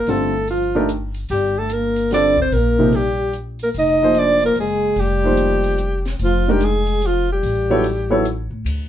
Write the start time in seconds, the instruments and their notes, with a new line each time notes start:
Already playing: trombone A#3, alto saxophone A#4
0.07 upright bass G1, upright piano D3 G3 C4 F4 A4, trombone A3, alto saxophone A4, open hi-hat
0.48 trombone F3, alto saxophone F4, open hi-hat
0.75 upright piano D#3 A3 D4 G4 A#4
0.89 closed hi-hat
1.14 open hi-hat
1.29 upright bass G1, trombone G3, alto saxophone G4, open hi-hat
1.59 trombone A3, alto saxophone A4
1.70 alto saxophone A#4, closed hi-hat
1.74 trombone A#3
1.96 open hi-hat
2.11 upright piano D3 G3 C4 F4 A4, trombone D4, alto saxophone D5, snare, open hi-hat
2.38 trombone C4, kick
2.42 alto saxophone C5
2.52 upright bass A#1, alto saxophone A#4, open hi-hat
2.57 trombone A#3
2.79 upright piano C3 F3 A#3 D#4 G4
2.93 trombone G3, alto saxophone G4, open hi-hat
3.33 closed hi-hat
3.59 open hi-hat
3.63 trombone A#3, alto saxophone A#4
3.74 upright bass F1, open hi-hat
3.78 trombone D#4, alto saxophone D#5
4.03 upright piano F3 A#3 D#4 G#4 C5
4.14 trombone D4, closed hi-hat
4.19 alto saxophone D5
4.40 trombone A#3, open hi-hat
4.46 alto saxophone A#4
4.55 upright bass F#1, open hi-hat
4.59 trombone G#3, alto saxophone G#4
4.96 upright bass F1, trombone G3, open hi-hat
5.00 alto saxophone G4
5.24 upright piano F3 A#3 D#4 G4 C5
5.37 closed hi-hat
5.64 open hi-hat
5.78 closed hi-hat
6.05 snare, open hi-hat
6.19 upright bass F1, trombone F3, open hi-hat
6.24 alto saxophone F4
6.48 upright piano D#3 G#3 D4 G4 A#4, trombone G3, alto saxophone G4
6.61 trombone G#3, alto saxophone G#4, closed hi-hat
6.87 open hi-hat
7.02 trombone F3, open hi-hat
7.07 alto saxophone F4
7.32 trombone G3, alto saxophone G4
7.43 upright bass A1, open hi-hat
7.70 upright piano F#3 B3 E4 A4 C#5
7.84 open hi-hat
8.10 upright piano F#3 B3 E4 A4 C#5
8.25 closed hi-hat
8.50 upright bass A2
8.64 upright bass D2, ride